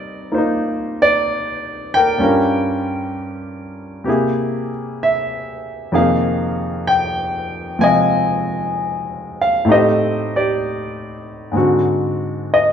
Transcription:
0.00 2.19 C3 soft
0.00 2.18 G3 soft
0.00 2.20 C4 soft
0.00 0.31 D#4 soft
0.00 1.95 A#4 soft
0.00 0.36 D5 medium
0.00 2.22 D#5 medium
0.32 2.20 A#3 soft
0.32 0.37 D#4 soft
0.32 2.20 F4 soft
0.32 2.21 C5 soft
0.38 2.19 D#4 soft
1.02 1.96 D5 medium
1.94 2.22 A#4 soft
1.94 4.68 G5 medium
2.18 4.06 G2 soft
2.18 4.06 G3 soft
2.18 4.07 C#4 soft
2.18 4.08 F4 soft
2.23 4.08 A#4 soft
4.04 5.92 C3 soft
4.04 5.91 A#3 soft
4.04 5.94 E4 soft
4.04 5.93 G4 soft
4.09 5.93 G#4 soft
5.03 5.98 E5 medium
5.92 9.67 F2 soft
5.92 7.77 C3 soft
5.92 9.67 D#3 soft
5.92 9.67 A#3 soft
5.92 9.67 D#4 soft
5.92 5.96 G#4 soft
5.92 6.84 F5 medium
5.98 7.78 G#4 soft
6.87 7.76 G5 medium
7.79 9.66 C3 soft
7.79 9.66 F3 soft
7.79 9.67 G#3 soft
7.79 9.65 C4 soft
7.79 9.68 F4 soft
7.79 9.43 G#5 medium
7.83 9.65 D#5 soft
9.41 9.70 F5 medium
9.65 11.53 A2 soft
9.65 11.54 A3 soft
9.65 11.53 C4 soft
9.65 11.55 D#4 soft
9.69 10.35 G4 soft
9.69 11.53 C5 soft
9.69 10.35 D#5 medium
10.36 11.53 G4 soft
10.36 12.17 D5 medium
11.51 12.73 G#2 soft
11.51 12.73 G#3 soft
11.51 12.73 C4 soft
11.56 12.73 D3 soft
11.56 12.73 F#4 soft
12.54 12.73 D#5 medium

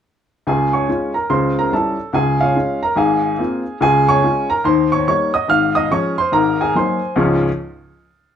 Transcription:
0.47 0.82 C#2 medium
0.47 0.82 C#3 medium
0.47 0.72 G#4 medium
0.47 0.73 G#5 medium
0.73 1.12 C#5 medium
0.73 1.12 G#5 medium
0.73 1.14 C#6 medium
0.89 1.11 G#3 soft
0.89 1.12 C#4 soft
0.89 1.12 F4 soft
1.14 1.29 A#4 soft
1.14 1.29 A#5 medium
1.30 1.65 C#2 medium
1.30 1.65 C#3 medium
1.30 1.55 C5 medium
1.30 1.56 C6 medium
1.59 1.72 A#4 medium
1.59 1.73 A#5 medium
1.72 1.95 G3 soft
1.72 1.96 C#4 soft
1.72 1.96 E4 soft
1.72 2.12 A4 soft
1.72 2.14 A5 medium
2.13 2.49 C#2 medium
2.13 2.49 C#3 medium
2.13 2.39 G#4 medium
2.13 2.40 G#5 medium
2.41 2.55 F4 medium
2.41 2.80 C#5 medium
2.41 2.82 F5 medium
2.56 2.79 G#3 soft
2.56 2.79 C#4 soft
2.56 2.79 F4 soft
2.83 2.98 A#4 medium
2.83 2.98 A#5 medium
2.96 3.32 G#1 medium
2.96 3.32 G#2 medium
2.96 3.77 G#4 medium
2.96 3.77 F5 medium
2.96 3.81 G#5 medium
3.39 3.62 A#3 soft
3.39 3.62 C4 soft
3.39 3.62 F4 soft
3.81 4.16 C#2 medium
3.81 4.16 C#3 medium
3.81 4.07 G#4 medium
3.81 4.08 G#5 loud
4.08 4.48 C#5 medium
4.08 4.48 G#5 medium
4.08 4.50 C#6 medium
4.24 4.47 G#3 soft
4.24 4.46 C#4 soft
4.24 4.47 F4 soft
4.50 4.64 A#4 medium
4.50 4.65 A#5 medium
4.64 5.00 D#2 medium
4.64 5.01 D#3 medium
4.64 4.90 C5 medium
4.64 4.91 C6 medium
4.92 5.07 C#5 medium
4.92 5.06 C#6 medium
5.08 5.31 G3 soft
5.08 5.31 A#3 soft
5.08 5.31 D#4 soft
5.08 5.33 C#5 medium
5.08 5.34 C#6 medium
5.34 5.49 D#5 medium
5.34 5.49 D#6 medium
5.48 5.84 G#1 medium
5.48 5.84 G#2 medium
5.48 5.74 F5 medium
5.48 5.76 F6 loud
5.75 5.90 D#5 medium
5.75 5.91 D#6 medium
5.91 6.14 F3 soft
5.91 6.14 G#3 soft
5.91 6.15 C#4 soft
5.91 6.16 C#5 medium
5.91 6.18 C#6 medium
6.18 6.33 C5 medium
6.18 6.33 C6 medium
6.32 6.68 G#1 medium
6.32 6.68 G#2 medium
6.32 6.58 A#4 medium
6.32 6.59 A#5 medium
6.61 6.75 G#4 medium
6.61 6.75 G#5 medium
6.75 6.98 F#3 soft
6.75 6.98 A#3 soft
6.75 6.99 D#4 soft
6.75 7.15 C5 soft
6.75 7.15 G#5 soft
6.75 7.18 C6 medium
7.16 7.44 C#2 medium
7.16 7.44 G#2 medium
7.16 7.44 F3 medium
7.16 7.44 G#3 medium
7.16 7.44 C#4 medium
7.16 7.45 F4 medium
7.16 7.45 C#6 medium

